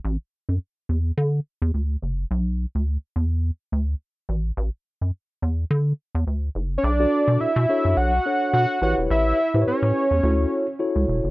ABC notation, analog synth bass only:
X:1
M:4/4
L:1/16
Q:"Swing 16ths" 1/4=106
K:Bm
V:1 name="Analog synth bass" clef=bass
A,,, z2 F,, z2 E,,2 D,2 z E,, D,,2 F,,,2 | B,,,3 D,,2 z E,,3 z D,,2 z2 A,,,2 | A,,, z2 F,, z2 E,,2 D,2 z E,, D,,2 F,,,2 | B,,,2 z B,, B,, B,, z F,, B,,,2 z2 B,, z A,,, E,,, |
A,,,2 z A,, A,, A,, z E,, D,,2 z3 C,, E,,, F,,, |]